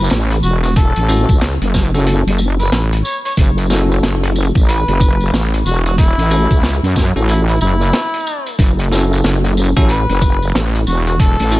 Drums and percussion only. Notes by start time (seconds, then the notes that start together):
0.04 tambourine
0.10 snare, closed hi-hat, tambourine
0.30 closed hi-hat, tambourine
0.43 tambourine
0.63 cross-stick, closed hi-hat, tambourine
0.76 kick, closed hi-hat, tambourine
0.96 closed hi-hat, tambourine
1.09 tambourine
1.29 kick, tambourine
1.41 snare, closed hi-hat, tambourine
1.61 closed hi-hat, tambourine
1.74 kick, snare, tambourine
1.94 tambourine
2.06 closed hi-hat, tambourine
2.27 closed hi-hat, tambourine
2.38 tambourine
2.59 cross-stick, tambourine
2.72 snare, closed hi-hat, tambourine
2.92 closed hi-hat, tambourine
3.05 tambourine
3.25 closed hi-hat, tambourine
3.37 kick, closed hi-hat, tambourine
3.58 closed hi-hat, tambourine
3.59 tambourine
3.66 tambourine
3.70 snare, tambourine
3.77 tambourine
3.91 tambourine
4.03 snare, closed hi-hat, tambourine
4.23 closed hi-hat, tambourine
4.36 tambourine
4.55 kick, tambourine
4.69 closed hi-hat, tambourine
4.88 closed hi-hat
5.00 kick, tambourine
5.21 tambourine
5.34 snare, tambourine
5.54 closed hi-hat, tambourine
5.66 tambourine
5.86 cross-stick, closed hi-hat, tambourine
5.98 kick, closed hi-hat, tambourine
6.19 closed hi-hat, tambourine
6.31 tambourine
6.51 kick, tambourine
6.63 snare, closed hi-hat, tambourine
6.84 closed hi-hat, tambourine
6.96 kick, snare, tambourine
7.17 tambourine
7.29 closed hi-hat, tambourine
7.49 closed hi-hat, tambourine
7.61 tambourine
7.81 cross-stick, tambourine
7.93 snare, closed hi-hat, tambourine
8.14 closed hi-hat
8.20 tambourine
8.27 tambourine
8.46 closed hi-hat, tambourine
8.59 kick, closed hi-hat, tambourine
8.79 closed hi-hat, tambourine
8.92 snare, tambourine
9.13 tambourine
9.24 snare, closed hi-hat, tambourine
9.44 closed hi-hat, tambourine
9.57 tambourine
9.76 kick, tambourine
9.89 closed hi-hat, tambourine
10.09 closed hi-hat, tambourine
10.22 kick, tambourine
10.42 tambourine
10.55 snare, closed hi-hat, tambourine
10.75 closed hi-hat, tambourine
10.87 tambourine
11.07 cross-stick, closed hi-hat, tambourine
11.20 kick, closed hi-hat, tambourine
11.39 closed hi-hat, tambourine
11.52 tambourine